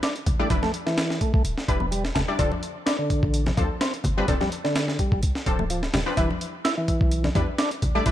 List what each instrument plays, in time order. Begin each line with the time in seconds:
0.03 tonewheel organ D4, snare, closed hi-hat
0.16 closed hi-hat
0.26 808-style bass A1, closed hi-hat, low conga
0.39 synth stab G3 D4 E4 D5, tonewheel organ A3
0.50 808-style bass E1, tonewheel organ E3, synth stab G3 D4 E4 B4, kick, closed hi-hat
0.63 tonewheel organ A3, snare, high conga
0.74 closed hi-hat
0.86 tonewheel organ E3, snare
0.98 snare, closed hi-hat
1.10 snare
1.21 tonewheel organ A3, kick, closed hi-hat
1.34 808-style bass B1, tonewheel organ A3, kick
1.44 808-style bass D1, closed hi-hat
1.58 snare
1.68 808-style bass E1, synth stab G3 D4 E4 B4, kick, closed hi-hat
1.80 tonewheel organ B3, high conga
1.91 tonewheel organ G3, closed hi-hat
2.05 snare
2.15 808-style bass E1, tonewheel organ A3, snare, closed hi-hat, low conga
2.28 synth stab G3 D4 E4 D5
2.39 808-style bass D1, tonewheel organ D3, synth stab F3 C4 D4 A4, kick, closed hi-hat
2.52 high conga
2.63 closed hi-hat
2.86 tonewheel organ D4, snare, closed hi-hat
2.99 tonewheel organ D3
3.10 kick, closed hi-hat
3.23 808-style bass A1, kick
3.34 closed hi-hat
3.46 tonewheel organ C3, snare, high conga
3.57 808-style bass D2, tonewheel organ F3, synth stab F3 C4 D4 A4, kick, closed hi-hat, high conga
3.81 tonewheel organ C4, snare, closed hi-hat
3.94 closed hi-hat
4.04 808-style bass G1, closed hi-hat, low conga
4.17 synth stab F3 C4 D4 B4, tonewheel organ G3
4.28 808-style bass D1, tonewheel organ D3, synth stab F3 C4 D4 A4, kick, closed hi-hat
4.41 tonewheel organ G3, snare, high conga
4.52 closed hi-hat
4.64 tonewheel organ D3, snare
4.76 snare, closed hi-hat
4.88 snare
4.99 tonewheel organ G3, kick, closed hi-hat
5.12 808-style bass A1, tonewheel organ G3, kick
5.23 808-style bass C2, closed hi-hat
5.35 snare
5.46 808-style bass D1, synth stab F3 C4 D4 A4, kick, closed hi-hat
5.59 tonewheel organ A3, high conga
5.70 tonewheel organ F3, closed hi-hat
5.83 snare
5.94 808-style bass D1, tonewheel organ G3, snare, open hi-hat, low conga
6.06 synth stab F3 C4 D4 B4
6.17 808-style bass E1, tonewheel organ E3, synth stab G3 D4 E4 B4, kick, closed hi-hat
6.30 high conga
6.41 closed hi-hat
6.65 tonewheel organ E4, snare, closed hi-hat
6.77 tonewheel organ E3
6.88 kick, closed hi-hat
7.01 808-style bass B1, kick
7.11 closed hi-hat
7.24 tonewheel organ D3, snare, high conga
7.35 808-style bass E2, tonewheel organ G3, synth stab G3 D4 E4 B4, kick, closed hi-hat, high conga
7.58 tonewheel organ D4, snare, closed hi-hat
7.71 closed hi-hat
7.82 808-style bass A1, closed hi-hat, low conga
7.95 synth stab G3 D4 E4 D5, tonewheel organ A3
8.06 808-style bass E1, tonewheel organ E3, synth stab G3 D4 E4 B4, kick, closed hi-hat